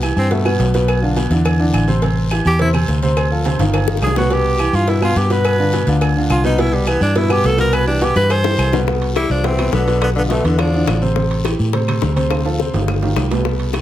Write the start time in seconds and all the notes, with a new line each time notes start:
Already playing: C2
0.02 E3 E4 G4, cowbell, low agogo, short guiro, claves
0.16 G2 C4, low agogo, short guiro
0.31 B2 A3 B3 B4, cowbell, long guiro
0.45 B2 B3 B4, low agogo, claves
0.59 B1, cowbell, low timbale, short guiro
0.74 B2 B3 B4, cowbell, short guiro
0.88 cowbell, low agogo, long guiro, claves
1.02 D3 D4 F4
1.16 B2 B3 B4, cowbell, low agogo, short guiro
1.30 E2 D3 D4 E4, cowbell, short guiro
1.45 cowbell, low agogo, long guiro, claves
1.59 D3 D4 E4
1.73 A1, cowbell, low agogo, short guiro, claves
1.88 C3 C4 C5, short guiro
2.02 C3 C4 C5, cowbell, low agogo, long guiro
2.30 E3 E4 G4, cowbell, low agogo, short guiro, claves
2.45 E2 G4, low agogo, short guiro
2.59 C3 C4 E4 C5, cowbell, long guiro
2.74 C3 C4 C5, low agogo, claves
2.88 D2, cowbell, short guiro
3.02 C3 C4 C5, cowbell, short guiro
3.17 cowbell, low agogo, long guiro, claves
3.31 F3 F4 A4
3.45 C3 C4 C5, cowbell, high timbale, low agogo, short guiro
3.59 G1 D#3 D#4 F4, cowbell, high timbale, short guiro
3.74 cowbell, high timbale, low agogo, long guiro, claves
3.88 D#3 D#4 F4, high bongo
3.97 high bongo
4.01 C2 G#4, cowbell, low timbale, low agogo, short guiro, claves
4.07 low bongo
4.16 B2 B3 F#4 B4, low bongo, low timbale, short guiro
4.30 B2 B3 G4 B4, cowbell, low agogo, long guiro
4.59 E3 E4 G4, cowbell, low agogo, short guiro, claves
4.73 G2 F4, low agogo, short guiro
4.87 B2 B3 E4 B4, cowbell, long guiro
5.01 B2 B3 F4 B4, low agogo, claves
5.16 G2 G4, cowbell, short guiro
5.30 B2 B3 B4, cowbell, short guiro
5.45 cowbell, low agogo, long guiro, claves
5.59 D3 D4 F4
5.73 B2 B3 B4, cowbell, low agogo, short guiro
5.87 D2 D3 D4 F4, cowbell, short guiro
6.01 cowbell, low agogo, long guiro, claves
6.16 D3 D4 F4
6.30 C2 F4, cowbell, low agogo, short guiro, claves
6.44 B2 B3 D#4 B4, short guiro
6.58 B2 B3 E4 B4, cowbell, low agogo, long guiro
6.74 G3
6.87 E3 B3 E4 G4, cowbell, low agogo, short guiro, claves
7.01 G2 D4, low agogo, short guiro
7.15 B2 B3 E4 B4, cowbell, long guiro
7.29 B2 B3 G4 B4, low agogo, claves
7.44 C2 A4, cowbell, low timbale, short guiro
7.58 B2 B3 A#4 B4, cowbell, short guiro
7.73 B4, cowbell, low agogo, long guiro, claves
7.87 E3 D4 E4 G4
8.01 B2 B3 G4 B4, cowbell, low agogo, short guiro
8.15 G2 E3 E4 G4 B4, cowbell, short guiro
8.29 C5, cowbell, low agogo, long guiro, claves
8.44 E3 E4 G4, high bongo
8.58 C2, cowbell, low agogo, short guiro, claves
8.73 B2 B3 B4, low bongo, short guiro
8.87 B2 B3 B4, high bongo, long guiro
9.02 high timbale
9.15 E3 G3 E4 G4, high bongo, high timbale, short guiro, claves
9.29 C2 F3 D4, short guiro
9.44 B2 E3 B3 C4 B4, high bongo, high timbale, long guiro
9.59 B2 B3 B4, high timbale, claves
9.72 B1 D3 B3, high bongo, low bongo, low timbale, short guiro
9.88 B2 B3 B4, high timbale, short guiro
10.01 D3 B3, high bongo, high timbale, long guiro, claves
10.15 D3 B3 D4 F4, high bongo
10.26 B2 G#3
10.30 B2 D3 A3 B3 B4, high bongo, high timbale, short guiro
10.44 E2 D3 B3 D4 E4, high bongo, high timbale, short guiro
10.58 F3 D4, high bongo, high timbale, long guiro, claves
10.73 D3 D4 E4, high bongo
10.87 A1, high bongo, low bongo, high timbale, low timbale, short guiro, claves
11.02 C3 C4 C5, short guiro
11.16 C3 C4 C5, high bongo, long guiro
11.31 high timbale
11.44 E3 E4 G4, high bongo, high timbale, short guiro, claves
11.59 A2, short guiro
11.73 C3 C4 C5, high bongo, high timbale, long guiro
11.88 C3 C4 C5, high timbale, claves
12.02 D2, high bongo, low bongo, short guiro
12.16 C3 C4 C5, high timbale, short guiro
12.30 high bongo, high timbale, long guiro, claves
12.45 F3 F4 A4, high bongo, high timbale
12.59 C3 C4 C5, high bongo, short guiro
12.74 G1 D#3 D#4 F4, high bongo, low timbale, short guiro
12.88 high bongo, low timbale, long guiro, claves
13.02 D#3 D#4 F4, high bongo, low timbale
13.16 C2, high bongo, low bongo, low timbale, short guiro, claves
13.31 B2 B3 B4, low timbale, short guiro
13.45 B2 B3 B4, high bongo, long guiro
13.60 high timbale
13.73 E3 E4 G4, high bongo, high timbale, short guiro, claves